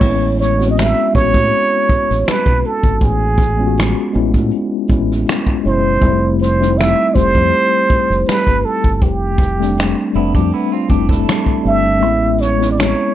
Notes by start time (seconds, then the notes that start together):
Already playing: C#5
0.00 A1 G#3 B3 C4 E4, kick, crash
0.09 C#4
0.38 C#5, snare, closed hi-hat
0.57 G#3 B3 C4 F#4, closed hi-hat
0.61 snare
0.66 C#4
0.70 D#5
0.77 E5, finger snap, snare, closed hi-hat
1.13 A1 G#3 B3 C#4 F#4 C#5, kick, closed hi-hat
1.17 snare
1.34 A2, kick, closed hi-hat
1.52 closed hi-hat
1.88 muted fingered electric bass stroke, kick, closed hi-hat
2.11 A1, snare
2.25 B4, finger snap, muted fingered electric bass stroke, snare, closed hi-hat
2.46 B1, kick
2.65 A4, closed hi-hat
2.83 G#1, kick
3.01 A1 G#4, kick, closed hi-hat
3.38 kick, snare, closed hi-hat
3.57 G#3 B3 C#4 F4
3.67 F#4
3.77 finger snap, snare, closed hi-hat
4.13 A1 G#3 B3 C#4 E4, closed hi-hat
4.34 A2, kick, closed hi-hat
4.51 closed hi-hat
4.88 A1 G#3 B3 C#4 E4, kick, closed hi-hat
5.12 snare
5.26 finger snap, snare, closed hi-hat
5.47 kick
5.64 F#1 B2 G#3 C#4 E4 C5, closed hi-hat
6.01 F1 G3 G#3 C4 E4, kick, closed hi-hat
6.09 A3
6.39 C5, snare, closed hi-hat
6.59 G3 A3 C4 D#4, snare, closed hi-hat
6.69 E4
6.78 E5, finger snap, snare, closed hi-hat
7.14 F1 G3 A3 C4 G4 C5, kick, snare, closed hi-hat
7.35 F2, kick
7.52 closed hi-hat
7.89 muted fingered electric bass stroke, kick, closed hi-hat
8.10 F1, snare
8.26 B4, finger snap, snare, closed hi-hat
8.47 G1, kick
8.65 A4, open hi-hat
8.84 G1, kick
8.97 A4
9.02 F1 G4, kick, closed hi-hat
9.38 kick, snare, closed hi-hat
9.59 G3 A3 C4 D4, snare, closed hi-hat
9.77 finger snap, snare, closed hi-hat
10.14 F1 G3 A3 B3 C4 D4 E4, closed hi-hat
10.35 F2 D4 G4, kick, closed hi-hat
10.52 B3 E4, closed hi-hat
10.72 C4 F4
10.88 F1 G3 A3 C4 D4 G4, kick, closed hi-hat
10.98 E4
11.09 E4 A4, kick, snare
11.26 finger snap, snare, closed hi-hat
11.46 kick
11.63 G1 G3 A3 C4 D4 E5, closed hi-hat
12.00 A1 G#3 B3 C#4 E4, closed hi-hat
12.38 C#5, snare, closed hi-hat
12.57 G#3 B3 C4 E4, closed hi-hat
12.62 snare
12.66 C#4
12.71 D5
12.77 C#5, finger snap, snare, closed hi-hat